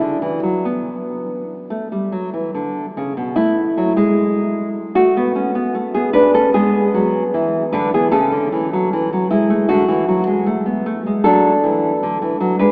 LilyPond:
\new Staff \with { instrumentName = "Nylon-string guitar" } { \time 4/4 \key d \major \tempo 4 = 76 << { d'2. r4 | \key a \major <a e'>2 <a fis'>4~ <a fis'>16 <b gis'>16 <d' b'>16 <cis' a'>16 | <b gis'>4. <d' b'>16 <b gis'>16 <cis' a'>4. <gis e'>8 | <a fis'>2 <d' a'>4.~ <d' a'>16 <d' b'>16 | } \\ { d16 e16 fis16 b4~ b16 a16 g16 fis16 e16 d8 cis16 b,16 | r8 fis16 gis4~ gis16 r16 b16 cis'16 b16 a4 | gis8 fis8 e8 d16 e16 cis16 d16 e16 fis16 e16 fis16 r16 a16 | d16 e16 fis16 gis16 a16 b16 a16 gis16 fis8 e8 d16 e16 fis16 gis16 | } >> }